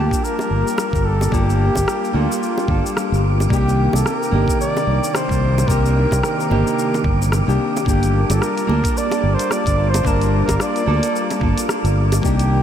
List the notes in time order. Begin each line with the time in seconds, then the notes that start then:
Already playing: G3 A#3 D4 F4 G4 A5 D6
0.00 A5
0.11 kick, shaker
0.24 A#4, shaker
0.39 high bongo, shaker
0.51 G1
0.67 shaker
0.78 cross-stick, high bongo, shaker
0.93 G1, kick, shaker
1.05 A4
1.21 high bongo, shaker
1.31 G1 A#3 D4 F4 G4 A4, kick, shaker
1.50 shaker
1.75 G1, kick, high bongo, shaker
1.88 cross-stick, shaker
2.04 shaker
2.13 D2 A#3 D4 F4 A4
2.32 shaker
2.43 shaker
2.58 high bongo, shaker
2.67 G1 A#3 D4 F4 A4, kick
2.86 shaker
2.97 cross-stick, high bongo, shaker
3.12 G1, shaker
3.40 high bongo, shaker
3.49 C2 C3 D#3 A#3 D4 D#4 G4, kick
3.53 shaker
3.69 shaker
3.93 C2 A4, high bongo, shaker
4.06 A#4, cross-stick, shaker
4.23 shaker
4.31 G1 A#3 D4 D#4 G4
4.48 kick, shaker
4.61 D5, shaker
4.77 high bongo, shaker
4.87 C2
5.04 shaker
5.14 C5, cross-stick, high bongo, shaker
5.29 C2, kick, shaker
5.58 high bongo, shaker
5.67 C2 A#3 D4 D#4 G4 A#4, kick, shaker
5.85 shaker
6.11 C2, kick, high bongo, shaker
6.23 A#4, cross-stick, shaker
6.40 shaker
6.50 G1 A#3 D4 D#4 G4, high bongo
6.67 shaker
6.79 shaker
6.94 high bongo, shaker
7.04 G1, kick
7.22 shaker
7.32 cross-stick, high bongo, shaker
7.47 C2 A#3 D4 D#4 G4, shaker
7.77 high bongo, shaker
7.85 G1 G3 A#3 D4 F4 G4 A4 A5, kick, shaker
8.03 closed hi-hat, shaker
8.30 G1 A4, closed hi-hat, high bongo, shaker
8.42 A#4, cross-stick, shaker
8.57 closed hi-hat, shaker
8.67 D2 A#3 D4 F4 A4, high bongo
8.84 kick, closed hi-hat, shaker
8.97 D5, shaker
9.11 closed hi-hat, high bongo, shaker
9.23 G1
9.34 C5
9.39 closed hi-hat, shaker
9.51 D5, cross-stick, high bongo, shaker
9.66 G1, kick, closed hi-hat, shaker
9.89 C5
9.94 closed hi-hat, high bongo, shaker
10.03 G1 A#3 D4 F4 A5, kick, shaker
10.07 A#4
10.22 closed hi-hat, shaker
10.44 G1 A#4, kick
10.49 closed hi-hat, high bongo, shaker
10.60 D5, cross-stick, shaker
10.76 closed hi-hat, shaker
10.86 D2 A#3 D4 F4 A4
11.03 closed hi-hat, shaker
11.16 shaker
11.30 closed hi-hat, high bongo, shaker
11.39 G1 A#3 D4 F4 A4, kick
11.58 closed hi-hat, shaker
11.69 cross-stick, high bongo, shaker
11.84 G1, closed hi-hat, shaker
12.12 closed hi-hat, high bongo, shaker
12.21 C2 C3 D#3 A#3 D4 D#4 G4, kick, shaker
12.39 closed hi-hat, shaker